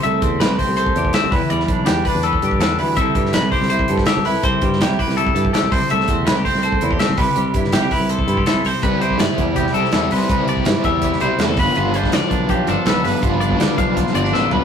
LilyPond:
<<
  \new Staff \with { instrumentName = "Clean electric guitar" } { \time 4/4 \key c \major \tempo 4 = 164 e''4 b'8 c''8 c''4 e''8 b'8 | d''4 g'8 b'8 a'4 a'8 b'8 | e''4 b'8 c''8 c''4 e''8 b'8 | c''4 g'8 b'8 a'4 a'8 c''8 |
e''4 b'8 c''8 c''4 e''8 b'8 | r4 g'8 b'8 a'4 a'8 c''8 | b'8 c''8 d''4 g'8 a'8 a'8 b'8~ | b'8 d''4 e''4 c''8 a'8 b'8 |
b'8 c''8 d''4 g'8 a'8 a'8 b'8~ | b'8 d''4 f''4 d''8 a'8 b'8 | }
  \new Staff \with { instrumentName = "Clean electric guitar" } { \time 4/4 \key c \major << { r8 c'8 g'8 c'8 a'8 g'8 c'8 r8 | r8 d'8 g'8 d'8 b'8 g'8 d'8 r8 | <g e' g' a'>4 e'8 g'8 e'8 a'8 g'8 e'8 | r4 e'8 g'8 e'8 a'8 g'8 r8 |
r8 c'8 e'16 g'16 c'8 a'8 e'16 g'16 c'8 <g e' g' b'>8~ | <g e' g' b'>8 e'8 e'16 g'16 e'8 c''8 e'16 g'16 e'8 r8 | b'8 g'8 e'4 e'8 g'8 e'8 c''8 | b'8 g'8 e'4 e'4. b'8 |
f'8 d'4 d'8 f'8 d'8 b'8 b'8 | f'8 d'4 d'8 f'8 c'16 d'16 b'8 b'8 | } \\ { <c a>2.~ <c a>8 e8 | g2.~ g8 e8 | c8 g2.~ g8 | c8 g2. c8 |
a2.~ a8 c8 | g2.~ g8 c8 | c4. g2~ g8 | c4. g4 b,8 a,8 g,8~ |
g,4 g2~ g8 g,8~ | g,4 g2~ g8 g,8 | } >> }
  \new Staff \with { instrumentName = "Overdriven electric guitar" } { \time 4/4 \key c \major r1 | r1 | r1 | r1 |
r1 | r1 | <c g c' e' g'>8 <c' e' g'>8 <g c' e' g'>4. <c' e' g'>8 <c g c' e' g'>8 <c' e' g'>8 | <c g c' e' g'>8 <c' e' g'>8 <g c' e' g'>4. <c' e' g'>8 <c g c' e' g'>8 <g, d f b f'>8 |
<g, d f b f'>8 <f b f'>8 <d f b f'>4. <f b f'>8 <g, d f b f'>8 <f b f'>8 | <g, d f b f'>8 <f b f'>8 <d f b f'>4. <f b f'>8 <g, d f b f'>8 <f b f'>8 | }
  \new Staff \with { instrumentName = "Fingered electric bass" } { \clef bass \time 4/4 \key c \major c,8 e,8 c,8 r16 c,8. e,8 r16 c,16 e,16 r16 | e,8 b,,8 e,8 r16 e,8. g,8 e,8 d,8 | c,8 g,8 c,8 r16 c,8. g,8 r16 c,16 c,16 r16 | c,8 g,8 c,8 r16 c,8. g,8 r16 c,16 c,16 r16 |
c,8 e,8 c,8 r16 c,8. e,8 r16 c,16 c,16 r16 | c,8 g,8 c,8 r16 c,8. g,8 r16 c,16 c,16 r16 | c,4 g,16 r16 e,4 c,16 r16 e,8 c,16 r16 | c,4 g,16 r16 e,4 c,16 r16 e,8 g,,16 r16 |
g,,4 d,16 r16 b,,4 g,,16 r16 b,,8 g,,16 r16 | g,,4 d,16 r16 b,,4 g,,8 a,,8 b,,8 | }
  \new DrumStaff \with { instrumentName = "Drums" } \drummode { \time 4/4 hh8 <hh bd>8 <hh sn>8 <hho bd>8 hh16 bd16 hh16 bd16 <hh sn>8 <hho bd>8 | hh16 sn16 <hh bd>8 <hh sn>8 <hho bd>8 hh16 bd16 hh16 bd16 <hh sn>8 hho8 | <hh bd>8 <hh bd>16 sn16 <hh sn>8 <hho bd>16 sn16 hh16 bd16 hh16 <bd sn>16 <hh sn>8 hho8 | <hh bd>8 <hh bd>16 sn16 <hh sn>8 <hho bd>16 sn16 hh16 bd16 hh16 bd16 <hh sn>8 <hho bd>8 |
hh16 sn16 <hh bd>8 <hh sn>8 <hho bd>16 sn16 hh16 bd16 hh16 bd16 <hh sn>8 <hho bd>8 | hh8 <hh bd>16 sn16 <hh sn>8 <hho bd>8 hh16 bd16 hh16 bd16 <hh sn>8 hho8 | <hh bd>8 hh16 bd16 <hh sn>8 <hh bd>8 <hh bd>16 sn16 hh16 sn16 <hh sn>8 hho16 sn16 | <hh bd>8 hh16 bd16 <hh sn>8 <hh bd>8 <hh bd>16 sn16 hh8 <hh sn>8 <hho bd>8 |
hh8 hh16 <bd sn>16 <hh sn>8 <hh bd>8 <hh bd>8 hh8 <hh sn>8 <hho sn>8 | <hh bd>8 hh16 bd16 <hh sn>8 <hh bd>8 <hh bd>16 sn16 hh16 sn16 sn8 tomfh8 | }
>>